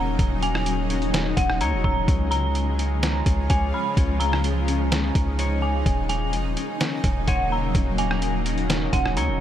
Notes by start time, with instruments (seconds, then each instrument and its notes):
Already playing: 808-style bass D#1, ambient pad C#3 F#3 A#3 D#4, harp C#4 C#5, synth bell A#5
0.19 808-style bass D#1, ambient pad G#3, harp C#4, kick, closed hi-hat
0.42 harp C#4, synth bell G#5, closed hi-hat
0.55 cross-stick
0.66 closed hi-hat
0.90 harp C#4, closed hi-hat
1.02 closed hi-hat
1.13 harp C#4, snare, closed hi-hat
1.37 808-style bass D#1, harp C#4, synth bell F#5, kick, closed hi-hat
1.50 cross-stick
1.61 808-style bass D#2, harp C#5, synth bell A#5, closed hi-hat
1.73 808-style bass D#1
1.84 808-style bass D#1, synth bell A#5, kick
2.08 808-style bass C#2, ambient pad C#3 F3 F4, harp C#4, kick, closed hi-hat
2.31 harp C#4, synth bell A#5, closed hi-hat
2.55 closed hi-hat
2.79 harp C#4, closed hi-hat
3.02 harp C#4, snare, closed hi-hat
3.26 808-style bass C#2, harp C#4, kick, closed hi-hat
3.49 808-style bass C#2, harp C#5, synth bell G#5, kick, closed hi-hat
3.74 synth bell B5
3.97 808-style bass C#2, harp C#4, ambient pad D#4, kick, closed hi-hat
4.20 harp C#4, synth bell A#5, closed hi-hat
4.33 cross-stick
4.44 closed hi-hat
4.68 harp C#4, closed hi-hat
4.91 harp C#4, snare, closed hi-hat
5.15 808-style bass C#2, harp C#4, kick, closed hi-hat
5.39 harp C#5, closed hi-hat
5.62 synth bell G#5
5.86 808-style bass D#1, ambient pad C#3 F#3 A#3, harp C#4, kick, closed hi-hat
6.09 harp C#4, synth bell G#5, closed hi-hat
6.33 808-style bass F1, closed hi-hat
6.45 808-style bass D#1
6.56 harp C#4, closed hi-hat
6.80 harp C#4, snare, closed hi-hat
7.04 808-style bass D#1, harp C#4, kick, closed hi-hat
7.27 808-style bass D#1, harp C#5, synth bell F#5, kick, closed hi-hat
7.52 synth bell A#5
7.75 808-style bass D#1, harp C#4, kick, closed hi-hat
7.98 harp C#4, synth bell G#5, closed hi-hat
8.11 cross-stick
8.22 closed hi-hat
8.46 harp C#4, closed hi-hat
8.58 closed hi-hat
8.68 harp C#4, snare, closed hi-hat
8.92 808-style bass D#1, harp C#4, synth bell F#5, kick, closed hi-hat
9.06 cross-stick
9.17 808-style bass D#2, harp C#5, synth bell A#5, closed hi-hat
9.29 808-style bass D#1